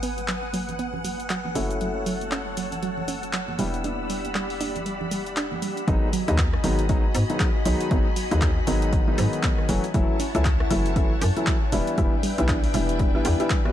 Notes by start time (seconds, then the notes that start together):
Already playing: G#1 B3 D#4 F#4 G#4 B4 F#5 G#5 D#6
0.03 B3, open hi-hat, shaker
0.18 closed hi-hat, high conga, shaker
0.28 F#3, clap, shaker
0.53 F#3, open hi-hat, high conga, shaker
0.69 closed hi-hat, low conga, shaker
0.79 B3, closed hi-hat, shaker
0.94 low conga
1.04 F#3, open hi-hat, high conga, shaker
1.20 closed hi-hat, shaker
1.30 F#3, clap, closed hi-hat, shaker
1.45 high conga, low conga
1.55 F#1 A3 C#4 E4 F#4 A4 C#5 A5 E6, open hi-hat, shaker
1.71 closed hi-hat, shaker
1.81 F#3, closed hi-hat, high conga, shaker
2.06 F#3, open hi-hat, shaker
2.21 closed hi-hat, high conga, shaker
2.31 C#4, clap, shaker
2.57 F#3, open hi-hat, high conga, shaker
2.72 closed hi-hat, low conga, shaker
2.83 F#3, closed hi-hat, shaker
2.98 low conga
3.08 C#4, open hi-hat, high conga, shaker
3.23 closed hi-hat, shaker
3.33 F#3, clap, closed hi-hat, shaker
3.48 high conga, low conga
3.59 E1 G3 B3 D4 E4 G4 D5 B5, open hi-hat, shaker
3.74 closed hi-hat, shaker
3.84 D4, closed hi-hat, high conga, shaker
4.10 G3, open hi-hat, shaker
4.25 closed hi-hat, high conga, shaker
4.35 G3, clap, shaker
4.50 open hi-hat
4.60 D4, open hi-hat, high conga, shaker
4.76 closed hi-hat, low conga, shaker
4.86 G3, closed hi-hat, shaker
5.01 low conga
5.11 G3, open hi-hat, high conga, shaker
5.26 closed hi-hat, shaker
5.36 D4, clap, closed hi-hat, shaker
5.52 high conga, low conga
5.62 G3, open hi-hat, shaker
5.77 closed hi-hat, shaker
5.87 G#1 D#3 F#3 G#3 B3 D#4 F#4 D#5 G#5 B5, kick, closed hi-hat, shaker
6.13 F#3, open hi-hat, shaker
6.28 D#2 D#3 F#3 G#3 B3 D#4, closed hi-hat, shaker
6.38 B3, kick, clap, closed hi-hat, shaker
6.54 cross-stick
6.64 G#1 D#3 F#3 G#3 B3 D#4, open hi-hat, shaker
6.79 closed hi-hat, shaker
6.89 D#3 F#3 G#3 B3 D#4, kick, closed hi-hat, shaker
7.15 G#2 B3, open hi-hat, shaker
7.30 D#3 F#3 G#3 B3 D#4, closed hi-hat, shaker
7.40 F#3, kick, clap, closed hi-hat, shaker
7.65 B1 D#3 F#3 G#3 B3 D#4, open hi-hat, shaker
7.81 closed hi-hat, shaker
7.91 G#1 D#3 F#3 G#3 B3 D#4, kick, closed hi-hat, shaker
8.16 F#3, open hi-hat, shaker
8.31 D#2 D#3 F#3 G#3 B3 D#4, closed hi-hat, shaker
8.41 F#3, kick, clap, closed hi-hat, shaker
8.67 G#1 D#3 F#3 G#3 B3 D#4, open hi-hat, shaker
8.82 closed hi-hat, shaker
8.93 F#3, kick, closed hi-hat, shaker
9.08 D#3 F#3 G#3 B3 D#4
9.18 G#2 F#3, open hi-hat, shaker
9.33 closed hi-hat, shaker
9.43 B3, kick, clap, closed hi-hat, shaker
9.58 cross-stick
9.69 F#1 E3 F#3 A3 C#4 E4 F#4 C#5 F#5 A5, open hi-hat, shaker
9.84 closed hi-hat, shaker
9.94 F#1 E3 F#3 A3 C#4 E4, kick, closed hi-hat, shaker
10.20 C#4, open hi-hat, shaker
10.35 C#2 E3 F#3 A3 C#4 E4, closed hi-hat, shaker
10.45 F#3, kick, clap, closed hi-hat, shaker
10.60 cross-stick
10.70 F#1 E3 F#3 A3 C#4 E4, open hi-hat, shaker
10.86 closed hi-hat, shaker
10.96 E3 F#3 A3 C#4 E4, kick, closed hi-hat, shaker
11.21 F#2 F#3, open hi-hat, shaker
11.36 E3 F#3 A3 C#4 E4, closed hi-hat, shaker
11.46 F#3, kick, clap, closed hi-hat, shaker
11.72 E1 E3 G3 B3 D4 E4 B4 E5 G5, open hi-hat, shaker
11.87 closed hi-hat, shaker
11.98 E1 E3 G3 B3 D4 E4, kick, closed hi-hat, shaker
12.23 G3, open hi-hat, shaker
12.38 B1 E3 G3 B3 D4 E4, closed hi-hat, shaker
12.48 D4, kick, clap, closed hi-hat, shaker
12.64 open hi-hat
12.74 E1 E3 G3 B3 D4 E4, open hi-hat, shaker
12.89 closed hi-hat, shaker
12.99 G3, kick, closed hi-hat, shaker
13.15 E3 G3 B3 D4 E4
13.25 E2 G4, open hi-hat, shaker
13.40 E3 G3 B3 D4 E4 G4, closed hi-hat, shaker
13.50 G3, kick, clap, closed hi-hat, shaker
13.65 E3 G3 B3 D4 F#4, cross-stick